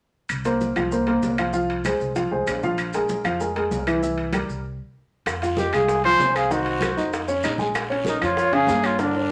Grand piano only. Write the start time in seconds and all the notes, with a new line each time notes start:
0.45 A#3 A#4 C5
0.76 F3 F4 F5
0.92 A#3 A#4 C5
1.07 A#3 A#4 C5
1.39 F3 F4 F5
1.53 F3 F4 F5
1.85 G#3 G#4 C5
2.16 F3 F4 F5
2.31 G#3 G#4 C5
2.63 F3 F4 F5
2.94 G#3 G#4 A#4
3.24 F3 F4 F5
3.40 G#3 G#4 A#4
3.56 G#3 G#4 A#4
3.87 E3 E4 E5
4.02 E3 E4 E5
4.34 G3 G4 A#4
5.43 F4 F5
5.73 G#3 G#4
6.05 F3 F4
6.20 C4 C5
6.50 D#3 D#4
6.81 F#3 F#4
6.97 D#4 D#5
7.28 C#4 C#5
7.44 D#4 D#5
7.59 G#3 G#4
7.90 C#4 C#5
8.21 F3 F4
8.52 C#3 C#4
8.68 A#3 G#4
8.99 D3 D4